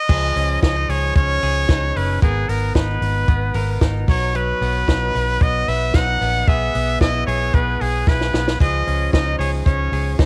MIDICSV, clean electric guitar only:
0, 0, Header, 1, 2, 480
1, 0, Start_track
1, 0, Tempo, 531444
1, 80, Time_signature, 4, 2, 24, 8
1, 9264, End_track
2, 0, Start_track
2, 0, Title_t, "Clean electric guitar"
2, 0, Program_c, 0, 27
2, 82, Note_on_c, 0, 53, 90
2, 88, Note_on_c, 0, 68, 69
2, 330, Note_on_c, 0, 61, 62
2, 553, Note_off_c, 0, 61, 0
2, 564, Note_on_c, 0, 61, 65
2, 684, Note_off_c, 0, 61, 0
2, 684, Note_on_c, 0, 63, 56
2, 804, Note_off_c, 0, 68, 0
2, 808, Note_on_c, 0, 68, 64
2, 1048, Note_on_c, 0, 61, 56
2, 1288, Note_off_c, 0, 68, 0
2, 1291, Note_on_c, 0, 68, 62
2, 1520, Note_off_c, 0, 63, 0
2, 1531, Note_on_c, 0, 63, 65
2, 1761, Note_off_c, 0, 61, 0
2, 1772, Note_on_c, 0, 61, 58
2, 2004, Note_off_c, 0, 53, 0
2, 2008, Note_off_c, 0, 61, 0
2, 2008, Note_off_c, 0, 68, 0
2, 2012, Note_on_c, 0, 59, 93
2, 2017, Note_on_c, 0, 70, 70
2, 2251, Note_off_c, 0, 59, 0
2, 2255, Note_on_c, 0, 59, 66
2, 2488, Note_off_c, 0, 63, 0
2, 2492, Note_on_c, 0, 63, 63
2, 2731, Note_off_c, 0, 70, 0
2, 2967, Note_off_c, 0, 59, 0
2, 2971, Note_on_c, 0, 59, 66
2, 3208, Note_on_c, 0, 70, 69
2, 3447, Note_off_c, 0, 63, 0
2, 3451, Note_on_c, 0, 63, 61
2, 3692, Note_on_c, 0, 54, 79
2, 3735, Note_off_c, 0, 70, 0
2, 3919, Note_off_c, 0, 54, 0
2, 3929, Note_on_c, 0, 54, 91
2, 3935, Note_on_c, 0, 71, 57
2, 4168, Note_off_c, 0, 59, 0
2, 4171, Note_on_c, 0, 59, 65
2, 4411, Note_off_c, 0, 63, 0
2, 4415, Note_on_c, 0, 63, 63
2, 4649, Note_off_c, 0, 71, 0
2, 4653, Note_on_c, 0, 71, 76
2, 4890, Note_off_c, 0, 59, 0
2, 4894, Note_on_c, 0, 59, 62
2, 5130, Note_off_c, 0, 71, 0
2, 5133, Note_on_c, 0, 71, 63
2, 5366, Note_off_c, 0, 63, 0
2, 5377, Note_on_c, 0, 63, 57
2, 5608, Note_off_c, 0, 59, 0
2, 5611, Note_on_c, 0, 59, 51
2, 5849, Note_off_c, 0, 54, 0
2, 5854, Note_off_c, 0, 59, 0
2, 5858, Note_on_c, 0, 59, 83
2, 5860, Note_off_c, 0, 71, 0
2, 5864, Note_on_c, 0, 68, 74
2, 5900, Note_off_c, 0, 63, 0
2, 6084, Note_off_c, 0, 59, 0
2, 6095, Note_on_c, 0, 59, 66
2, 6337, Note_on_c, 0, 64, 68
2, 6572, Note_off_c, 0, 68, 0
2, 6576, Note_on_c, 0, 68, 69
2, 6807, Note_off_c, 0, 59, 0
2, 6818, Note_on_c, 0, 59, 69
2, 7053, Note_off_c, 0, 68, 0
2, 7057, Note_on_c, 0, 68, 61
2, 7286, Note_off_c, 0, 64, 0
2, 7296, Note_on_c, 0, 64, 62
2, 7518, Note_off_c, 0, 59, 0
2, 7529, Note_on_c, 0, 59, 54
2, 7774, Note_off_c, 0, 68, 0
2, 7774, Note_on_c, 0, 53, 82
2, 7778, Note_on_c, 0, 68, 67
2, 7815, Note_off_c, 0, 59, 0
2, 7818, Note_off_c, 0, 64, 0
2, 8014, Note_on_c, 0, 61, 63
2, 8252, Note_on_c, 0, 63, 62
2, 8489, Note_off_c, 0, 68, 0
2, 8493, Note_on_c, 0, 68, 69
2, 8723, Note_off_c, 0, 61, 0
2, 8733, Note_on_c, 0, 61, 62
2, 8965, Note_off_c, 0, 68, 0
2, 8969, Note_on_c, 0, 68, 62
2, 9205, Note_off_c, 0, 63, 0
2, 9209, Note_on_c, 0, 63, 66
2, 9264, Note_off_c, 0, 53, 0
2, 9264, Note_off_c, 0, 61, 0
2, 9264, Note_off_c, 0, 63, 0
2, 9264, Note_off_c, 0, 68, 0
2, 9264, End_track
0, 0, End_of_file